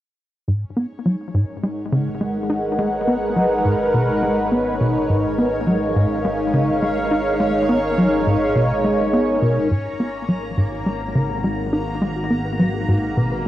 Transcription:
0.48 G#1 G#2 G#3 C#4 C#5
0.66 D#4
0.77 B3
1.06 F#3
1.24 A#4
1.34 G#2
1.54 F#5
1.63 G#3
1.92 C#3
2.09 B4
2.21 G#3
2.50 D#4
2.79 G#3
3.08 B3
3.36 F#3
3.65 G#2
3.94 B2
4.23 G#3
4.52 B3
4.81 B2
5.09 G#2
5.38 B3
5.60 F5
5.67 F#3
5.96 G#2
6.25 G#3
6.54 C#3
6.66 C#5
6.82 G#3
7.11 D#4
7.40 G#3
7.69 B3
7.98 F#3
8.27 G#2
8.56 B2
8.84 G#3
9.13 B3
9.42 B2
9.71 G#1 G#2 A#3 B4 A#5
9.85 G#4
10.00 B3 F#4
10.23 F#5
10.28 F#3 B4
10.43 B4
10.55 G#2 F#4 G#4
10.72 F#4
10.86 G#3
11.01 B4
11.15 C#3 B4
11.29 G#4
11.44 G#3 F#4
11.73 D#4 B4
11.87 B4
12.01 G#3 G#4
12.16 F#4
12.30 B3
12.45 B4
12.59 F#3 B4
12.74 G#4
12.88 G#2 F#4
13.17 B2 B4
13.31 B4

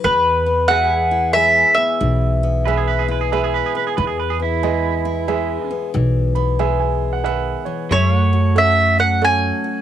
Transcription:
0.04 E2 E3 B4
0.46 B3
0.68 G#3 F#4 G#4 B4 E5 F#5
0.73 G#5
0.96 G#4
1.11 E4
1.33 G#3 G#4 B4 E5
1.74 B3 E5
2.01 B1 E3
2.43 B3
2.65 G#3 G#4 B4 E5
2.77 G#4
2.88 B4
2.99 G#4
3.08 E4 B4
3.21 G#4
3.32 G#3 G#4 B4 E5
3.44 G#4
3.54 B4
3.66 G#4
3.75 B3 B4
3.87 G#4
3.97 E2 E3 B4
4.07 G#4
4.20 B4
4.30 G#4
4.40 B3 E4
4.63 G#3 G#4 B4 D#5
5.05 E4
5.28 G#3 G#4 B4 E5
5.70 B3
5.94 B1 E3
6.35 B3 B5
6.59 G#3 G#4 B4 E5 G#5
6.80 G#5
7.13 F#5
7.24 D#3 G#4 B4 E5 F#5
7.65 E3 C#5
7.91 F#2 F#3 G#3 C#5 E5
8.11 A3
8.18 F#5
8.33 F#4
8.55 C#4 A4 C#5 E5 F#5
8.99 A4 F#5
9.22 C#4 A4 C#5 F#5 G#5
9.64 F#4

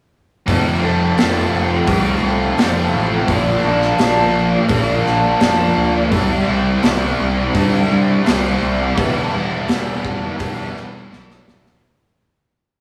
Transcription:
0.47 F1 F2 C3 F3 A3 C4, kick, open hi-hat
0.82 F1 F3 A3 C4
1.16 F1 C3 F3 A3 C4, snare, open hi-hat
1.52 F1
1.87 C2 F2 C3 F3 A3 C4, kick, open hi-hat
2.22 C2
2.58 F1 C3 F3 A3 C4, snare, open hi-hat
2.94 A1
3.28 A#1 A#2 F3 A#3 D4, kick, open hi-hat
3.63 A#1 F3 A#3 D4
3.82 snare
3.98 A#1 A#2 F3 A#3 D4, snare, open hi-hat
4.69 A#1 A#2 F3 A#3 D4, kick, open hi-hat
5.06 A#1, snare
5.40 F1 A#2 F3 A#3 D4, snare, open hi-hat
5.77 D2
6.12 C2 C3 G3 C4 E4, kick, open hi-hat
6.47 C2 G3 C4 E4
6.82 C2 C3 G3 C4 E4, snare, open hi-hat
7.20 C2
7.54 G2 C3 G3 C4 E4, kick, open hi-hat
7.92 G2
8.25 C2 C3 G3 C4 E4, snare, open hi-hat
8.62 C2
8.95 E1 E3 G3 B3 E4, kick, open hi-hat
9.32 E1 G3 B3 E4
9.66 E1 E3 G3 B3 E4, snare, open hi-hat
10.05 kick
10.38 E1 E3 G3 B3 E4, kick, open hi-hat
10.76 E1, snare
11.11 B1 E3 G3 B3 E4, snare
11.30 snare
11.48 B1, snare
11.66 snare

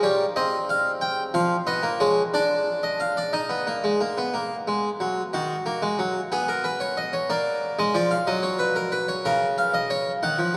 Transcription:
0.03 G3 C#5
0.36 C4 D#5
0.69 F5
1.01 G5
1.34 F3 F5
1.67 B3 D#5
1.83 A#3
2.00 G#3 C#5
2.34 D4 D5
2.83 D#5
3.00 F5
3.17 D5
3.33 D#4 D#5
3.50 B3
3.67 A#3
3.84 G#3
4.01 A#3
4.18 B3
4.34 A#3
4.68 G#3
5.00 F#3
5.33 D#3 F#4
5.66 A#3
5.82 G#3
5.99 F#3
6.32 B3 G#4
6.48 A#4
6.64 B4
6.80 C#5
6.97 D#5
7.13 C#5
7.30 A#3 D5
7.79 G#3 D#5
7.95 F3 D5
8.11 F5
8.27 F#3 D#5
8.43 C#5
8.59 B4
8.76 A#4
8.92 B4
9.08 C#5
9.25 C#3 A#4
9.58 F5
9.74 D#5
9.90 C#5
10.23 D#3 F#5
10.38 F3

